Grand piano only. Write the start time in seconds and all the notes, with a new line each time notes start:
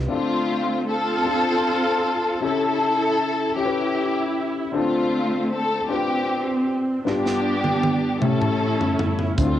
Already playing: G3 B3 D4 F4
0.08 D3 C4 D4 E4 A4
0.16 F4
1.24 C4 D4 F4 A4
2.41 C#3 C#4 E4 G4 A4
3.56 C#4 E4 G4 A4
3.66 B4
4.72 D3 C4 D4 F4 A4
5.88 C4 D4 F4 B4
7.05 G2 B3 D4 F4 G4
8.20 A2 A3 C#4 E4 G4
9.37 D3 A3 C4 D4 E4
9.47 F4